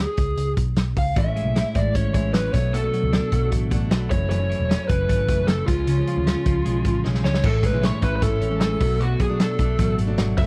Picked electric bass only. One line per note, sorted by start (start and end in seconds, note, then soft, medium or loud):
0.18 0.35 C#2 medium
0.37 0.54 C#2 medium
0.57 0.74 B1 medium
0.77 0.93 B1 medium
0.97 1.14 C#2 medium
1.16 1.41 A1 loud
1.45 1.62 B1 medium
1.75 1.92 A1 medium
1.95 2.12 G#1 medium
2.14 2.48 A1 medium
2.54 2.87 B1 medium
3.03 3.20 C#2 medium
3.32 3.49 B1 loud
3.52 3.69 A1 medium
3.72 3.88 A1 medium
3.91 4.08 B1 medium
4.11 4.53 F#1 medium
4.60 4.77 E1 medium
4.89 5.06 F#1 loud
5.09 5.26 G#1 medium
5.29 5.62 F#1 medium
5.68 6.01 C#2 medium
6.17 6.34 D2 medium
6.46 6.63 C#2 medium
6.66 6.83 B1 medium
6.85 7.02 A1 medium
7.06 7.22 B1 medium
7.25 7.41 C#2 medium
7.44 7.69 A1 medium
7.73 7.90 B1 medium
8.02 8.19 A1 medium
8.22 8.39 G#1 medium
8.42 8.75 A1 medium
8.81 9.14 B1 medium
9.59 9.76 B1 loud
9.79 9.96 A1 medium
9.99 10.15 G#1 medium
10.18 10.35 G#1 medium
10.38 10.46 F#1 medium